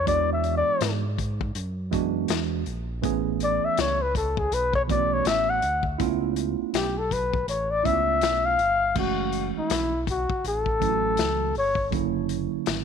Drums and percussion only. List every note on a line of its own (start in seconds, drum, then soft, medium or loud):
0.07 kick loud
0.07 closed hi-hat medium
0.44 closed hi-hat medium
0.81 snare loud
0.81 closed hi-hat loud
1.18 kick medium
1.18 closed hi-hat medium
1.41 kick loud
1.55 closed hi-hat medium
1.93 kick medium
1.93 closed hi-hat medium
2.28 snare loud
2.28 closed hi-hat medium
2.66 closed hi-hat medium
3.03 kick loud
3.03 closed hi-hat medium
3.40 closed hi-hat medium
3.78 snare loud
3.78 closed hi-hat medium
4.15 kick medium
4.15 closed hi-hat medium
4.37 kick loud
4.52 closed hi-hat medium
4.73 kick medium
4.89 kick medium
4.89 closed hi-hat medium
5.25 snare loud
5.25 closed hi-hat loud
5.62 closed hi-hat medium
5.83 kick medium
6.00 kick loud
6.00 closed hi-hat medium
6.36 closed hi-hat medium
6.74 snare loud
6.74 closed hi-hat loud
7.11 kick medium
7.11 closed hi-hat medium
7.33 kick loud
7.48 closed hi-hat medium
7.85 kick medium
7.85 closed hi-hat medium
8.21 snare loud
8.21 closed hi-hat medium
8.59 closed hi-hat medium
8.95 kick loud
8.95 crash medium
9.32 closed hi-hat medium
9.70 snare loud
9.70 closed hi-hat loud
10.07 kick medium
10.07 closed hi-hat medium
10.30 kick loud
10.45 closed hi-hat medium
10.66 kick medium
10.82 kick medium
10.82 closed hi-hat medium
11.17 snare loud
11.17 closed hi-hat medium
11.55 open hi-hat soft
11.75 kick medium
11.92 kick loud
11.92 closed hi-hat medium
12.29 closed hi-hat medium
12.66 snare loud
12.66 closed hi-hat medium